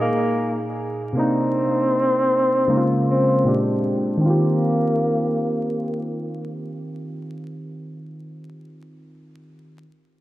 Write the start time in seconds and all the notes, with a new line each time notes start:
Already playing: A#2 A#3 D#4 G#4
0.01 A#3
1.13 C3 A#3
1.17 C4 D4 D#4
2.67 C#3 G#3 A#3 D#4
2.77 F4
3.11 C4
3.44 A#2 G#3 C4 D4 G4
4.17 D#3 C4
4.25 A#3 F4
4.30 G4